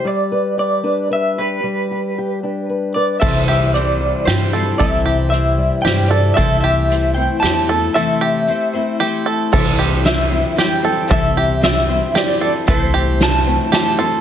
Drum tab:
CC |------|------|x-----|------|
HH |------|------|--x-x-|x-x-x-|
SD |------|------|----o-|----o-|
BD |------|------|o-----|o-----|

CC |------|------|x-----|------|
HH |x-x-x-|------|--x-x-|x-x-x-|
SD |----o-|------|--o-o-|--o-o-|
BD |o-----|------|o-----|o-----|

CC |------|
HH |x-x-x-|
SD |--o-o-|
BD |o-----|